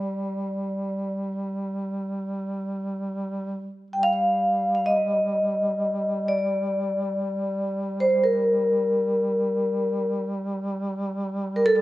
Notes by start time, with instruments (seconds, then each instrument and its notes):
Already playing: duduk G3, vibraphone D5
3.90 duduk G3, vibraphone G5
4.03 vibraphone F5
4.75 vibraphone F5
4.86 vibraphone D#5
6.28 vibraphone D5
8.00 vibraphone C5
8.24 vibraphone A#4
11.56 vibraphone A#4
11.66 vibraphone A4